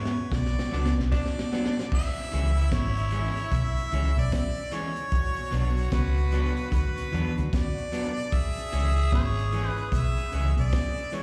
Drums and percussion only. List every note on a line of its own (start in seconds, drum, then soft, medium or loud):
0.05 snare medium
0.32 kick medium
0.32 snare medium
0.45 snare medium
0.59 snare medium
0.72 snare medium
0.86 snare medium
0.99 snare medium
1.12 kick loud
1.12 snare loud
1.26 snare medium
1.39 snare loud
1.53 snare medium
1.66 snare loud
1.79 snare medium
1.92 kick loud
1.92 crash loud
2.17 closed hi-hat medium
2.32 closed hi-hat medium
2.57 closed hi-hat medium
2.72 kick loud
2.72 snare loud
2.72 closed hi-hat medium
2.97 closed hi-hat medium
3.11 closed hi-hat medium
3.37 closed hi-hat medium
3.52 kick loud
3.52 closed hi-hat medium
3.77 closed hi-hat medium
3.92 closed hi-hat medium
4.17 closed hi-hat medium
4.32 kick loud
4.32 snare loud
4.32 closed hi-hat loud
4.58 closed hi-hat soft
4.71 closed hi-hat medium
4.96 closed hi-hat medium
5.12 kick loud
5.12 closed hi-hat medium
5.36 closed hi-hat medium
5.52 closed hi-hat medium
5.77 closed hi-hat medium
5.92 kick loud
5.92 snare loud
5.92 closed hi-hat loud
6.17 closed hi-hat soft
6.32 closed hi-hat medium
6.57 closed hi-hat medium
6.72 kick loud
6.72 closed hi-hat medium
6.98 closed hi-hat medium
7.13 closed hi-hat medium
7.38 closed hi-hat medium
7.53 kick loud
7.53 snare loud
7.53 closed hi-hat loud
7.78 closed hi-hat soft
7.92 closed hi-hat medium
8.17 closed hi-hat medium
8.32 kick loud
8.32 closed hi-hat medium
8.58 closed hi-hat medium
8.73 closed hi-hat medium
8.97 closed hi-hat medium
9.12 kick loud
9.12 snare loud
9.12 closed hi-hat medium
9.38 closed hi-hat medium
9.52 closed hi-hat medium
9.77 closed hi-hat soft
9.92 kick loud
9.92 closed hi-hat loud
10.18 closed hi-hat medium
10.32 closed hi-hat medium
10.57 closed hi-hat medium
10.72 kick loud
10.72 snare loud
10.72 closed hi-hat medium
10.98 closed hi-hat soft
11.12 closed hi-hat medium